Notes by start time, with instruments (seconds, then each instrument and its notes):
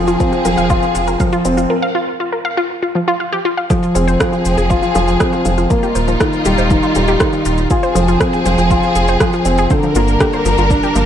Already playing: analog synth bass F1, grand piano F3 F4, string section F3 C4 G#4
0.07 synth arpeggio sound F4, shaker
0.20 grand piano C4, kick, shaker
0.33 synth arpeggio sound F4, shaker
0.45 analog synth bass F1, grand piano F3, synth arpeggio sound A#4, shaker
0.58 analog synth bass F1, synth arpeggio sound F5, shaker
0.70 synth arpeggio sound F4, grand piano F4, kick, shaker
0.83 shaker
0.95 analog synth bass F1, synth arpeggio sound F4, shaker
1.07 synth arpeggio sound A#4, shaker
1.20 grand piano F3, synth arpeggio sound F5, kick, shaker
1.32 synth arpeggio sound F4, shaker
1.45 analog synth bass F1, grand piano C4, shaker
1.57 synth arpeggio sound F4, shaker
1.70 synth arpeggio sound A#4
1.82 synth arpeggio sound F5
1.95 synth arpeggio sound F4
2.20 synth arpeggio sound F4
2.32 synth arpeggio sound A#4
2.45 synth arpeggio sound F5
2.57 synth arpeggio sound F4
2.83 synth arpeggio sound F4
2.95 synth arpeggio sound F3
3.08 synth arpeggio sound F4
3.20 synth arpeggio sound F5
3.33 synth arpeggio sound G4
3.45 synth arpeggio sound F4
3.57 synth arpeggio sound F5
3.70 grand piano F3, string section F3 C4 G#4, synth arpeggio sound F4, kick, shaker
3.83 shaker
3.95 analog synth bass F1, grand piano C4, synth arpeggio sound G#4, shaker
4.08 synth arpeggio sound C5, shaker
4.20 synth arpeggio sound F3, grand piano F3, kick, cross-stick, shaker
4.32 synth arpeggio sound F4, shaker
4.45 analog synth bass F1, shaker
4.58 analog synth bass F1, synth arpeggio sound G#4, shaker
4.70 grand piano F4, synth arpeggio sound C5, kick, shaker
4.82 synth arpeggio sound F3, shaker
4.95 analog synth bass F1, grand piano F3, synth arpeggio sound F4, shaker
5.08 shaker
5.20 grand piano C4, synth arpeggio sound G#4, kick, cross-stick, shaker
5.33 synth arpeggio sound C5, shaker
5.45 analog synth bass F1, synth arpeggio sound F3, grand piano F3, shaker
5.58 synth arpeggio sound F4, shaker
5.70 string section G3 D#4 F4, grand piano A#3, kick, shaker
5.83 synth arpeggio sound G4, shaker
5.95 analog synth bass D#1, synth arpeggio sound C5, shaker
6.08 synth arpeggio sound F3, shaker
6.20 grand piano D#3, synth arpeggio sound F4, kick, cross-stick, shaker
6.33 shaker
6.45 analog synth bass D#1, grand piano G3, synth arpeggio sound G4, shaker
6.58 analog synth bass D#1, synth arpeggio sound C5, shaker
6.70 grand piano D#3, synth arpeggio sound F3, kick, shaker
6.83 synth arpeggio sound F4, shaker
6.95 analog synth bass D#1, grand piano G3, shaker
7.08 synth arpeggio sound G4, shaker
7.20 grand piano D#3, synth arpeggio sound C5, kick, cross-stick, shaker
7.33 synth arpeggio sound F3, shaker
7.45 analog synth bass D#1, synth arpeggio sound F4, shaker
7.58 shaker
7.70 string section F3 C4 G#4, grand piano F4, synth arpeggio sound G#4, kick, shaker
7.83 synth arpeggio sound C5, shaker
7.95 analog synth bass F1, grand piano F3, synth arpeggio sound F3, shaker
8.08 synth arpeggio sound F4, shaker
8.20 grand piano C4, kick, cross-stick, shaker
8.33 synth arpeggio sound G#4, shaker
8.45 analog synth bass F1, grand piano F3, synth arpeggio sound C5, shaker
8.58 analog synth bass F1, synth arpeggio sound F3, shaker
8.70 grand piano F4, synth arpeggio sound F4, kick, shaker
8.83 shaker
8.95 analog synth bass F1, synth arpeggio sound G#4, shaker
9.08 synth arpeggio sound C5, shaker
9.20 grand piano F3, synth arpeggio sound F3, kick, cross-stick, shaker
9.33 synth arpeggio sound F4, shaker
9.45 analog synth bass F1, grand piano C4, shaker
9.58 synth arpeggio sound G#4, shaker
9.70 grand piano D3, string section G3 D4 A#4, synth arpeggio sound C5, kick, shaker
9.83 synth arpeggio sound F3, shaker
9.95 analog synth bass G1, grand piano A#3, synth arpeggio sound F4, shaker
10.08 shaker
10.20 grand piano D3, synth arpeggio sound G4, kick, cross-stick, shaker
10.33 synth arpeggio sound C5, shaker
10.45 analog synth bass G1, synth arpeggio sound F3, shaker
10.58 analog synth bass G1, synth arpeggio sound F4, shaker
10.70 grand piano D4, kick, shaker
10.83 synth arpeggio sound G4, shaker
10.95 analog synth bass G1, synth arpeggio sound F3, grand piano A#3, shaker